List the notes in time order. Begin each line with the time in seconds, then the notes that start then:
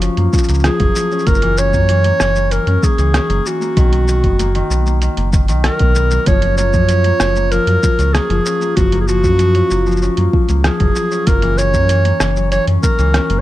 Already playing: F3 F#3 A#3 F#4
0.02 C#4, closed hi-hat, cabasa
0.17 F#2 A#3, closed hi-hat
0.33 F3, kick, cabasa
0.38 cabasa
0.43 cabasa
0.49 C#2 A#3, closed hi-hat, cabasa
0.54 cabasa
0.59 cabasa
0.64 F3 G#4, cross-stick, closed hi-hat, cabasa
0.80 F#1 F#3, kick, closed hi-hat
0.96 F3, cabasa
1.11 C#4, cabasa
1.19 cabasa
1.27 F#1 A#3 A#4, kick, closed hi-hat, cabasa
1.34 cabasa
1.42 E3, closed hi-hat
1.57 C#4 C#5, cabasa
1.73 F#2 A#3, kick, cabasa
1.89 E3, closed hi-hat, cabasa
2.04 A#3, closed hi-hat
2.20 F#1 E3, cross-stick, cabasa
2.36 F#3, cabasa
2.51 E3 A#4, closed hi-hat, cabasa
2.67 F#2 C#4, closed hi-hat
2.83 A#3 G#4, kick, cabasa
2.98 C#2 E3, closed hi-hat, cabasa
3.14 C#4, cross-stick, closed hi-hat, cabasa
3.30 F#1 A#3, closed hi-hat
3.46 E3 F#4, cabasa
3.61 A#3, cabasa
3.76 B1 D#3, kick, closed hi-hat, cabasa
3.92 F#3, closed hi-hat
4.08 D#3, cabasa
4.23 F#1 B3, kick, closed hi-hat
4.39 A#3, closed hi-hat, cabasa
4.55 D#3, closed hi-hat
4.70 B1 B3, cabasa
4.86 A#3, cabasa
5.02 D#3, closed hi-hat, cabasa
5.17 F#1 A#3, closed hi-hat
5.33 D#3, kick, cabasa
5.48 B1 D#3, closed hi-hat, cabasa
5.64 F#3 A#4, cross-stick, closed hi-hat, cabasa
5.79 B1 B3, kick, closed hi-hat
5.95 B3, cabasa
6.11 F#3, cabasa
6.26 F#1 F3 C#5, kick, closed hi-hat, cabasa
6.42 C#4, closed hi-hat
6.58 A#3 C#5, cabasa
6.73 F#2 F3, kick, cabasa
6.89 C#4, closed hi-hat, cabasa
7.04 A#3, closed hi-hat
7.20 F#1 F3, cross-stick, cabasa
7.36 A#3, cabasa
7.52 F3 A#4, closed hi-hat, cabasa
7.67 F#2 F#3, closed hi-hat
7.83 F3, kick, cabasa
7.99 C#2 C#4, closed hi-hat, cabasa
8.13 A#3 G#4, cross-stick, closed hi-hat, cabasa
8.30 F#1 F3, closed hi-hat
8.45 C#4, cabasa
8.61 A#3, cabasa
8.76 F#1 F3 F#4, kick, closed hi-hat, cabasa
8.92 A#3, closed hi-hat
9.01 G#4
9.07 F3 F#4, cabasa
9.24 F#2 F#3, kick, cabasa
9.39 F3, closed hi-hat, cabasa
9.55 C#4, closed hi-hat
9.70 F#1 A#3, cabasa
9.86 F3, cabasa
9.91 cabasa
9.96 cabasa
10.02 C#4, cabasa
10.17 F#2 A#3, closed hi-hat
10.33 F3, kick
10.49 C#2 A#3, closed hi-hat, cabasa
10.64 F3 G#4, cross-stick, closed hi-hat, cabasa
10.80 F#1 F#3, kick, closed hi-hat
10.96 F3, cabasa
11.11 C#4, cabasa
11.27 F#1 A#3 A#4, kick, closed hi-hat, cabasa
11.42 E3, closed hi-hat
11.58 C#4 C#5, cabasa
11.74 F#2 A#3, kick, cabasa
11.89 E3, closed hi-hat, cabasa
12.05 A#3, closed hi-hat
12.20 F#1 E3, cross-stick, cabasa
12.36 F#3, cabasa
12.52 E3 C#5, closed hi-hat, cabasa
12.67 F#2 C#4, closed hi-hat
12.83 A#3 A#4, kick, cabasa
12.99 C#2 E3, closed hi-hat, cabasa
13.14 C#4, cross-stick, closed hi-hat, cabasa
13.30 F#1 A#3, closed hi-hat